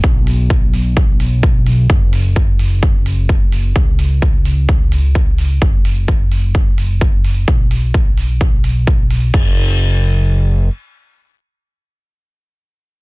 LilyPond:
<<
  \new Staff \with { instrumentName = "Analog synth bass" } { \clef bass \time 4/4 \key b \dorian \tempo 4 = 129 b,,1 | fis,,1 | cis,1 | fis,,1 |
b,,1 | fis,,2. r4 | r1 | }
  \new DrumStaff \with { instrumentName = "Drums" } \drummode { \time 4/4 bd8 hho8 bd8 hho8 bd8 hho8 bd8 hho8 | bd8 hho8 bd8 hho8 bd8 hho8 bd8 hho8 | bd8 hho8 bd8 hho8 bd8 hho8 bd8 hho8 | bd8 hho8 bd8 hho8 bd8 hho8 bd8 hho8 |
bd8 hho8 bd8 hho8 bd8 hho8 bd8 hho8 | <cymc bd>4 r4 r4 r4 | r4 r4 r4 r4 | }
>>